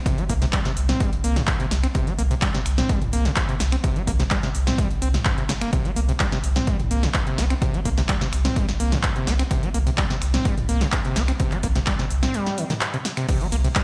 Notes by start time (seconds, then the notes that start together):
0.06 C3, kick, closed hi-hat
0.18 G3, closed hi-hat
0.29 C2 A#3, kick, open hi-hat
0.42 C3, snare, closed hi-hat
0.53 G3, finger snap, kick, clap, closed hi-hat
0.65 C3, snare, closed hi-hat
0.77 C2, open hi-hat
0.89 C4, snare, closed hi-hat, mid tom
1.00 G3, kick, closed hi-hat
1.13 A#1, closed hi-hat
1.24 C2 A#3, open hi-hat
1.36 C3, snare, closed hi-hat, mid tom
1.47 kick, clap, closed hi-hat
1.60 C3, closed hi-hat
1.71 C2, snare, open hi-hat
1.83 C4, finger snap, closed hi-hat
1.95 C3, kick, closed hi-hat
2.07 G3, closed hi-hat
2.18 C2 A#3, open hi-hat
2.31 C3, closed hi-hat
2.42 G3, finger snap, kick, clap, closed hi-hat
2.54 C3, snare, closed hi-hat
2.66 C2, finger snap, open hi-hat
2.78 C4, snare, closed hi-hat, mid tom
2.89 G3, kick, closed hi-hat
3.01 A#1, closed hi-hat, mid tom
3.13 C2 A#3, open hi-hat
3.25 C3, snare, closed hi-hat
3.36 kick, clap, closed hi-hat
3.49 C3, closed hi-hat
3.60 C2, snare, open hi-hat
3.72 C4, finger snap, closed hi-hat
3.84 C3, kick, closed hi-hat
3.96 G3, closed hi-hat
4.07 C2 A#3, kick, open hi-hat
4.19 C3, snare, closed hi-hat
4.31 G3, finger snap, kick, clap, closed hi-hat
4.43 C3, snare, closed hi-hat
4.55 C2, open hi-hat
4.67 C4, snare, closed hi-hat, mid tom
4.78 G3, kick, closed hi-hat
4.90 A#1, closed hi-hat
5.02 C2 C4, open hi-hat
5.14 snare, closed hi-hat, mid tom
5.25 kick, clap, closed hi-hat
5.38 C3, closed hi-hat
5.49 G1 C#3, snare, open hi-hat
5.61 A#3, finger snap, closed hi-hat
5.73 C3, kick, closed hi-hat
5.85 G3, closed hi-hat
5.96 C2 A#3, open hi-hat
6.09 C3, closed hi-hat
6.20 G3, finger snap, kick, clap, closed hi-hat
6.32 C3, snare, closed hi-hat
6.44 C2, open hi-hat
6.56 C4, snare, closed hi-hat, mid tom
6.67 G3, kick, closed hi-hat
6.79 A#1, closed hi-hat, mid tom
6.91 C2 A#3, open hi-hat
7.03 C3, snare, closed hi-hat
7.14 kick, clap, closed hi-hat
7.27 C3, closed hi-hat
7.38 C2 C4, snare, open hi-hat
7.50 C4, finger snap, closed hi-hat
7.62 C3, kick, closed hi-hat
7.74 G3, closed hi-hat
7.85 C2 A#3, kick, open hi-hat
7.98 C3, snare, closed hi-hat
8.09 G3, finger snap, kick, clap, closed hi-hat
8.21 C3, snare, closed hi-hat
8.33 C2, finger snap, open hi-hat
8.45 C4, snare, closed hi-hat, mid tom
8.56 G3, kick, closed hi-hat
8.68 A#1, snare, closed hi-hat
8.80 C2 A#3, open hi-hat
8.92 C3, snare, closed hi-hat, mid tom
9.03 kick, clap, closed hi-hat
9.16 C3, closed hi-hat
9.27 C2 C4, snare, open hi-hat
9.39 C4, finger snap, closed hi-hat
9.51 C3, kick, closed hi-hat
9.63 G3, closed hi-hat
9.74 C2 A#3, open hi-hat
9.87 C3, closed hi-hat
9.98 G3, finger snap, kick, clap, closed hi-hat
10.10 C3, snare, closed hi-hat
10.22 C2, finger snap, open hi-hat
10.34 C4, snare, closed hi-hat, mid tom
10.45 G3, kick, closed hi-hat
10.57 A#1, closed hi-hat, mid tom
10.69 C2 A#3, open hi-hat
10.81 C3, snare, closed hi-hat
10.92 kick, clap, closed hi-hat
11.05 C3, closed hi-hat
11.16 C2 C4, snare, open hi-hat
11.28 C4, finger snap, closed hi-hat
11.40 C3, kick, closed hi-hat
11.52 G3, clap, closed hi-hat
11.63 C2 A#3, kick, open hi-hat
11.76 C3, snare, closed hi-hat
11.86 G3, finger snap, kick, clap, closed hi-hat
11.99 C3, snare, closed hi-hat
12.11 C2, open hi-hat
12.23 C4, snare, closed hi-hat, mid tom
12.34 G3, closed hi-hat
12.46 snare, closed hi-hat
12.58 D#3, open hi-hat
12.70 D#3, snare, closed hi-hat, mid tom
12.81 clap, closed hi-hat
12.94 C3, closed hi-hat
13.05 snare, open hi-hat
13.17 C3, finger snap, closed hi-hat
13.29 C3, kick, closed hi-hat, crash
13.41 G3, closed hi-hat
13.52 C2 A#3, open hi-hat
13.64 C3, closed hi-hat
13.75 G3, finger snap, kick, clap, closed hi-hat